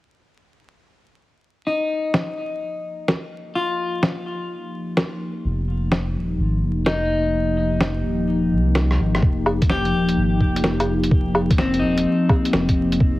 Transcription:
1.67 13.20 F3 medium
1.67 3.22 D#4 soft
1.89 13.20 D#4 medium
2.05 13.20 A#3 medium
2.14 snare medium
2.84 13.20 G4 medium
3.08 snare medium
3.55 5.11 F4 soft
4.03 snare loud
4.97 snare loud
5.45 6.14 F1 loud
5.92 snare loud
6.15 6.38 D#1 medium
6.39 6.64 G#1 medium
6.62 8.03 F1 medium
6.86 8.41 D#4 medium
6.86 snare loud
7.81 snare loud
8.05 8.53 D#1 medium
8.52 8.98 C2 loud
8.75 cross-stick medium
8.75 snare loud
8.91 cross-stick medium
8.99 9.21 G#1 loud
9.15 cross-stick medium
9.22 9.92 F1 loud
9.22 kick loud
9.46 low woodblock medium
9.62 kick medium
9.62 closed hi-hat medium
9.70 11.25 G4 medium
9.70 snare loud
9.85 closed hi-hat soft
9.94 10.16 D#1 medium
10.09 closed hi-hat medium
10.17 10.42 G#1 medium
10.41 11.81 F1 medium
10.41 kick medium
10.56 closed hi-hat medium
10.64 snare loud
10.80 closed hi-hat soft
10.80 low woodblock medium
11.03 closed hi-hat medium
11.11 kick loud
11.35 low woodblock medium
11.51 kick loud
11.51 closed hi-hat medium
11.58 13.14 C4 medium
11.58 snare loud
11.74 closed hi-hat soft
11.79 12.05 D#1 medium
11.79 13.20 D#4 medium
11.98 closed hi-hat medium
12.29 kick loud
12.29 low woodblock medium
12.45 closed hi-hat medium
12.53 12.99 F1 loud
12.53 snare loud
12.69 kick medium
12.69 closed hi-hat soft
12.92 closed hi-hat medium
13.00 13.20 F1 loud
13.00 kick loud

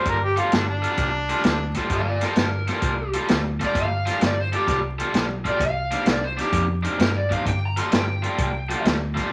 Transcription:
0.00 0.15 G3 medium
0.00 0.15 A#3 medium
0.00 0.15 F4 medium
0.00 0.14 A4 medium
0.05 0.38 G1 medium
0.05 0.22 A#4 medium
0.05 kick loud
0.05 closed hi-hat medium
0.24 0.40 G4 medium
0.36 0.62 G3 medium
0.36 0.61 A#3 medium
0.36 0.61 F4 medium
0.36 0.55 F4 medium
0.36 0.61 A4 medium
0.36 closed hi-hat medium
0.52 0.84 G1 medium
0.52 0.68 D4 medium
0.52 snare loud
0.52 closed hi-hat medium
0.69 1.80 D4 medium
0.82 1.07 G3 medium
0.82 1.07 A#3 medium
0.82 1.07 F4 medium
0.82 1.07 A4 medium
0.82 closed hi-hat medium
0.97 1.30 C2 medium
0.97 kick loud
0.97 closed hi-hat medium
1.29 1.54 G3 medium
1.29 1.54 A#3 medium
1.29 1.53 F4 medium
1.29 1.54 A4 medium
1.29 closed hi-hat medium
1.44 1.77 D2 medium
1.44 snare loud
1.44 closed hi-hat medium
1.74 2.00 G3 medium
1.74 2.00 A#3 medium
1.74 2.00 F4 medium
1.74 2.00 A4 medium
1.74 kick medium
1.74 snare soft
1.74 closed hi-hat medium
1.90 2.23 G1 medium
1.90 2.07 A4 medium
1.90 2.07 F5 medium
1.90 kick loud
1.90 closed hi-hat medium
2.07 2.22 F4 medium
2.07 2.22 D5 medium
2.21 2.46 G3 medium
2.21 2.46 A#3 medium
2.21 2.46 F4 medium
2.21 2.46 A4 loud
2.21 3.12 A#4 medium
2.21 snare soft
2.21 closed hi-hat medium
2.36 2.69 G1 medium
2.36 snare loud
2.36 closed hi-hat medium
2.67 2.93 G3 medium
2.67 2.92 A#3 medium
2.67 2.93 F4 medium
2.67 2.92 A4 medium
2.67 snare soft
2.67 closed hi-hat medium
2.82 3.15 C2 medium
2.82 kick loud
2.82 closed hi-hat medium
3.13 3.39 G3 medium
3.13 3.39 A#3 medium
3.13 3.38 F4 medium
3.13 3.38 A4 medium
3.13 closed hi-hat medium
3.28 3.62 D2 medium
3.28 snare loud
3.28 closed hi-hat medium
3.60 3.85 G3 medium
3.60 3.85 A#3 medium
3.60 3.85 F4 medium
3.60 3.84 A4 medium
3.60 kick medium
3.60 snare soft
3.60 closed hi-hat medium
3.65 3.77 D5 medium
3.75 4.08 G1 medium
3.75 kick loud
3.75 closed hi-hat medium
3.79 4.22 F5 medium
4.06 4.31 G3 medium
4.06 4.31 A#3 medium
4.06 4.31 F4 medium
4.06 4.30 A4 medium
4.06 snare soft
4.06 closed hi-hat medium
4.21 4.54 G1 medium
4.21 4.38 D5 medium
4.21 snare loud
4.21 closed hi-hat medium
4.40 4.54 C5 medium
4.52 4.78 G3 medium
4.52 4.77 A#3 medium
4.52 4.77 F4 medium
4.52 4.79 G4 medium
4.52 4.77 A4 medium
4.52 closed hi-hat medium
4.67 5.00 C2 medium
4.67 kick loud
4.67 snare soft
4.67 closed hi-hat medium
4.99 5.24 G3 medium
4.99 5.24 A#3 medium
4.99 5.24 F4 medium
4.99 5.23 A4 medium
4.99 closed hi-hat medium
5.14 5.46 B1 medium
5.14 snare medium
5.14 closed hi-hat medium
5.45 5.61 G3 medium
5.45 5.61 A#3 medium
5.45 5.60 F4 medium
5.45 5.60 A4 medium
5.45 5.61 D5 medium
5.45 kick medium
5.45 closed hi-hat medium
5.59 5.92 C2 medium
5.59 6.07 F5 medium
5.59 kick loud
5.59 closed hi-hat medium
5.91 6.16 C3 medium
5.91 6.16 D#3 medium
5.91 6.16 A#3 medium
5.91 6.16 D4 medium
5.91 closed hi-hat medium
6.06 6.39 C2 medium
6.06 snare loud
6.06 closed hi-hat medium
6.10 6.23 D5 medium
6.24 6.38 C5 medium
6.37 6.63 C3 medium
6.37 6.62 D#3 medium
6.37 6.63 A#3 medium
6.37 6.62 D4 medium
6.37 6.64 G4 medium
6.37 snare soft
6.37 closed hi-hat medium
6.52 6.85 F2 medium
6.52 kick loud
6.52 closed hi-hat medium
6.83 7.09 C3 medium
6.83 7.08 D#3 medium
6.83 7.08 A#3 medium
6.83 7.08 D4 medium
6.83 closed hi-hat medium
6.99 7.32 G2 medium
6.99 7.15 A#4 medium
6.99 snare loud
6.99 closed hi-hat medium
7.16 7.31 D5 medium
7.29 7.46 C3 medium
7.29 7.46 D#3 medium
7.29 7.46 A#3 medium
7.29 7.45 D4 medium
7.29 7.46 F5 medium
7.29 kick medium
7.29 closed hi-hat medium
7.45 7.78 G1 medium
7.45 7.62 G5 medium
7.45 kick loud
7.45 closed hi-hat medium
7.65 7.79 A#5 medium
7.77 8.02 G3 medium
7.77 8.02 A#3 medium
7.77 8.02 F4 medium
7.77 8.01 A4 medium
7.77 7.93 C6 medium
7.77 closed hi-hat medium
7.92 8.25 G1 medium
7.92 8.84 G5 medium
7.92 snare loud
7.92 closed hi-hat medium
8.22 8.48 G3 medium
8.22 8.48 A#3 medium
8.22 8.47 F4 medium
8.22 8.47 A4 medium
8.22 closed hi-hat medium
8.38 8.71 C2 medium
8.38 kick loud
8.38 closed hi-hat medium
8.69 8.94 G3 medium
8.69 8.94 A#3 medium
8.69 8.94 F4 medium
8.69 8.94 A4 medium
8.69 closed hi-hat medium
8.84 9.17 D2 medium
8.84 snare loud
8.84 closed hi-hat medium
9.14 9.32 G3 medium
9.14 9.32 A#3 medium
9.14 9.32 F4 medium
9.14 9.32 A4 medium
9.14 kick medium
9.14 snare soft
9.14 closed hi-hat medium

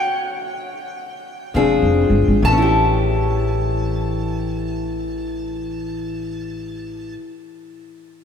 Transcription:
0.00 2.41 G5 medium
1.54 1.79 E1 medium
1.54 2.36 A#2 medium
1.54 2.39 F3 medium
1.54 2.40 C4 medium
1.54 2.40 D4 medium
1.54 2.40 G#4 medium
1.82 2.07 F1 medium
2.10 2.25 G1 medium
2.28 2.42 G#1 medium
2.42 7.12 A1 medium
2.42 7.15 A2 medium
2.42 7.14 A5 medium
2.47 7.20 E3 medium
2.52 7.25 C#4 medium
2.58 7.31 E4 medium
2.62 7.35 G4 medium

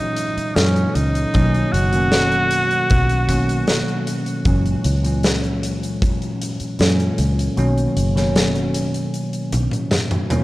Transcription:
0.00 0.56 A#2 medium
0.00 0.56 E3 medium
0.00 0.57 F#3 medium
0.00 0.57 G#3 medium
0.00 0.57 C#4 medium
0.00 0.57 D#4 medium
0.16 closed hi-hat medium
0.37 muted fingered electric bass stroke soft
0.37 closed hi-hat medium
0.55 0.85 F#2 medium
0.55 1.29 A#2 medium
0.55 1.30 E3 medium
0.55 1.30 F#3 medium
0.55 1.30 G#3 medium
0.55 0.96 C#4 medium
0.55 1.30 C#4 medium
0.55 snare loud
0.55 closed hi-hat medium
0.76 closed hi-hat soft
0.95 1.24 C#2 medium
0.95 1.74 D#4 loud
0.95 closed hi-hat medium
1.15 closed hi-hat medium
1.33 1.64 B1 medium
1.33 1.88 B2 medium
1.33 1.88 D#3 medium
1.33 1.88 F#3 medium
1.33 1.88 A#3 medium
1.33 1.89 C#4 loud
1.33 kick loud
1.33 closed hi-hat medium
1.54 closed hi-hat soft
1.72 2.82 F#1 medium
1.72 4.07 F#4 loud
1.72 closed hi-hat medium
1.92 3.24 B2 medium
1.92 3.24 D#3 medium
1.92 3.25 F#3 medium
1.92 3.25 A#3 medium
1.92 3.25 C#4 medium
1.92 closed hi-hat medium
2.12 snare loud
2.12 closed hi-hat medium
2.32 closed hi-hat soft
2.51 closed hi-hat loud
2.71 closed hi-hat medium
2.90 3.68 B1 loud
2.90 kick loud
2.90 closed hi-hat medium
3.09 closed hi-hat soft
3.29 3.45 B2 medium
3.29 3.45 D#3 medium
3.29 3.45 F#3 medium
3.29 3.45 A#3 medium
3.29 3.45 C#4 loud
3.29 kick medium
3.29 closed hi-hat loud
3.49 closed hi-hat medium
3.67 3.83 F#1 medium
3.67 snare loud
3.67 closed hi-hat medium
3.88 closed hi-hat soft
4.07 closed hi-hat medium
4.26 closed hi-hat medium
4.45 4.75 F#1 medium
4.45 5.00 A#2 medium
4.45 5.00 E3 medium
4.45 5.00 F#3 medium
4.45 5.00 G#3 medium
4.45 5.00 C#4 medium
4.45 kick loud
4.45 closed hi-hat medium
4.66 closed hi-hat soft
4.84 6.33 C#2 loud
4.84 closed hi-hat loud
5.03 6.74 A#2 medium
5.03 6.75 E3 medium
5.03 6.75 F#3 medium
5.03 6.76 G#3 medium
5.03 6.76 C#4 medium
5.03 closed hi-hat medium
5.23 snare loud
5.23 closed hi-hat medium
5.44 closed hi-hat soft
5.63 closed hi-hat medium
5.83 closed hi-hat medium
6.02 kick loud
6.02 closed hi-hat medium
6.22 closed hi-hat soft
6.42 closed hi-hat medium
6.60 muted fingered electric bass stroke soft
6.60 closed hi-hat medium
6.79 7.09 F#2 medium
6.79 7.53 A#2 medium
6.79 7.53 E3 medium
6.79 7.53 F#3 medium
6.79 7.53 G#3 medium
6.79 7.53 C#4 loud
6.79 snare loud
6.79 closed hi-hat medium
7.00 closed hi-hat soft
7.18 7.48 C#2 medium
7.18 closed hi-hat loud
7.39 closed hi-hat medium
7.57 7.87 B1 loud
7.57 8.11 B2 loud
7.57 8.11 D#3 medium
7.57 8.12 F#3 medium
7.57 8.12 A#3 medium
7.57 8.12 C#4 loud
7.57 closed hi-hat medium
7.78 closed hi-hat soft
7.96 9.06 F#1 medium
7.96 closed hi-hat medium
8.15 9.47 B2 medium
8.15 9.47 D#3 medium
8.15 9.48 F#3 medium
8.15 9.48 A#3 medium
8.15 9.49 C#4 loud
8.15 snare soft
8.15 closed hi-hat medium
8.36 snare loud
8.36 closed hi-hat medium
8.55 closed hi-hat soft
8.74 closed hi-hat loud
8.94 closed hi-hat medium
9.14 closed hi-hat medium
9.33 closed hi-hat soft
9.52 9.67 B1 medium
9.52 closed hi-hat loud
9.52 high tom medium
9.71 closed hi-hat medium
9.71 high tom medium
9.91 snare loud
9.91 closed hi-hat medium
9.91 mid tom medium
10.11 closed hi-hat soft
10.11 mid tom medium
10.30 10.44 B2 medium
10.30 10.44 D#3 medium
10.30 10.44 F#3 medium
10.30 10.44 A#3 medium
10.30 10.44 C#4 loud
10.30 closed hi-hat medium
10.30 mid tom medium

